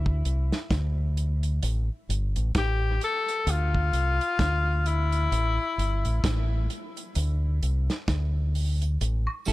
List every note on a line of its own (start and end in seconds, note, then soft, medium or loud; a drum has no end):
0.00 0.22 D2 loud
0.00 0.71 E4 loud
0.06 kick medium
0.25 0.50 C2 medium
0.25 closed hi-hat medium
0.52 snare medium
0.52 closed hi-hat soft
0.71 1.59 D2 medium
0.71 kick loud
0.71 snare loud
0.71 closed hi-hat medium
1.17 closed hi-hat medium
1.43 closed hi-hat medium
1.63 1.88 A1 loud
1.63 closed hi-hat loud
2.09 2.34 G1 medium
2.09 closed hi-hat medium
2.36 2.53 A1 medium
2.36 closed hi-hat medium
2.55 2.98 A1 medium
2.55 2.99 G4 loud
2.55 kick loud
2.55 snare loud
2.55 closed hi-hat loud
3.01 3.52 A4 loud
3.01 closed hi-hat medium
3.28 closed hi-hat medium
3.47 3.90 D2 loud
3.47 4.89 F4 loud
3.47 closed hi-hat loud
3.75 kick medium
3.93 4.19 C2 medium
3.93 closed hi-hat medium
4.21 closed hi-hat soft
4.39 5.27 D2 loud
4.39 kick loud
4.39 snare loud
4.39 closed hi-hat medium
4.86 6.71 E4 loud
4.86 closed hi-hat medium
5.12 closed hi-hat medium
5.32 5.57 A1 loud
5.32 closed hi-hat medium
5.78 6.03 G1 medium
5.78 closed hi-hat medium
6.05 6.23 A1 medium
6.05 closed hi-hat medium
6.24 6.67 A1 medium
6.24 kick loud
6.24 snare medium
6.24 closed hi-hat loud
6.70 closed hi-hat medium
6.97 closed hi-hat medium
7.15 7.59 D2 loud
7.15 closed hi-hat loud
7.62 7.88 C2 medium
7.62 closed hi-hat medium
7.90 snare medium
7.90 closed hi-hat soft
8.08 8.96 D2 medium
8.08 kick loud
8.08 snare loud
8.08 closed hi-hat medium
8.55 open hi-hat medium
8.82 closed hi-hat medium
9.01 9.26 A1 medium
9.01 closed hi-hat loud
9.27 high woodblock medium
9.45 9.53 G1 medium
9.45 9.53 G3 medium
9.45 9.53 C#4 medium
9.45 9.53 E4 medium
9.45 9.53 A4 medium
9.45 closed hi-hat medium
9.45 tambourine medium